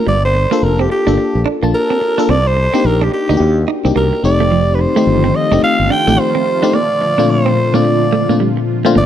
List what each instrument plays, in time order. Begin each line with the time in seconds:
0.07 fretless electric bass G1, clean electric guitar G3, alto saxophone D5
0.25 alto saxophone C5
0.34 muted clean electric guitar stroke
0.51 clean electric guitar A#3, fm electric piano A#3 D4 F4 A4
0.63 fretless electric bass F1, alto saxophone A#4
0.79 clean electric guitar C4, alto saxophone G4
0.90 alto saxophone G4, muted clean electric guitar stroke
1.07 fretless electric bass G1, fm electric piano A#3 D4 F4 A4, clean electric guitar D4
1.18 muted clean electric guitar stroke, muted fretless electric bass stroke
1.35 fretless electric bass A#1
1.46 clean electric guitar D4
1.63 fretless electric bass A#1, fm electric piano A#3 D4 F4 A5, clean electric guitar A#3
1.75 alto saxophone A#4
1.90 clean electric guitar C4
2.01 muted clean electric guitar stroke
2.18 fm electric piano A#3 D4 F4 A4, clean electric guitar D4
2.29 fretless electric bass C2, clean electric guitar C4, alto saxophone D5
2.47 alto saxophone C5
2.57 muted clean electric guitar stroke
2.73 fm electric piano A#3 D4 D#4 G4, clean electric guitar C4
2.85 fretless electric bass A#1, alto saxophone A#4
3.02 clean electric guitar D4, alto saxophone G4
3.12 alto saxophone G4, muted clean electric guitar stroke
3.29 fretless electric bass D2, fm electric piano A#3 D4 D#4 F#4, clean electric guitar D#4
3.37 fretless electric bass D#2, fm electric piano G4, muted clean electric guitar stroke
3.68 clean electric guitar D#4
3.85 fretless electric bass C2, fm electric piano A#3 D4 D#4 G4, clean electric guitar C4
3.96 fretless electric bass C2, clean electric guitar A#3, alto saxophone A#4
4.13 muted clean electric guitar stroke
4.23 fretless electric bass F1, fm electric piano A3 C4 D#4 G4, alto saxophone D5
4.40 clean electric guitar A3
4.51 analog synth pad D#3 F3 A3 C4 F4, clean electric guitar F3
4.75 alto saxophone B4
4.79 alto saxophone C5, muted clean electric guitar stroke
4.96 fm electric piano A3 C4 D#4 G4, clean electric guitar A3
5.07 fretless electric bass G1
5.24 clean electric guitar C4
5.35 alto saxophone D#5, muted clean electric guitar stroke
5.51 fretless electric bass F1, fm electric piano A3 C4 D#4 G4, clean electric guitar D4
5.62 alto saxophone F5, muted clean electric guitar stroke, muted fretless electric bass stroke
5.79 fretless electric bass G1
5.90 clean electric guitar D4, alto saxophone G5
6.07 fretless electric bass A1, fm electric piano A3 C4 D#4 G4, clean electric guitar A3
6.19 alto saxophone C5
6.35 clean electric guitar C4
6.46 muted clean electric guitar stroke
6.62 fm electric piano A3 C4 D#4 G4, clean electric guitar D4
6.73 analog synth pad A#2 D3, clean electric guitar A#3, alto saxophone D5
7.01 muted clean electric guitar stroke
7.18 fm electric piano A#2 A3 C4 D4 F4, clean electric guitar D4
7.30 alto saxophone C5
7.46 clean electric guitar C4
7.57 muted clean electric guitar stroke
7.74 fm electric piano A#2 A3 C4 D4 F4, clean electric guitar A#3, alto saxophone D5
7.85 muted clean electric guitar stroke
8.13 clean electric guitar A3
8.29 fm electric piano A#2 A3 C4 D4 F4, clean electric guitar A#3
8.40 clean electric guitar G3
8.57 muted clean electric guitar stroke
8.85 fm electric piano A#2 A3 C4 D4 F4, clean electric guitar A3
8.95 fretless electric bass G1, analog synth pad D3 F3 G3 A#3 F4, clean electric guitar A#3, alto saxophone D5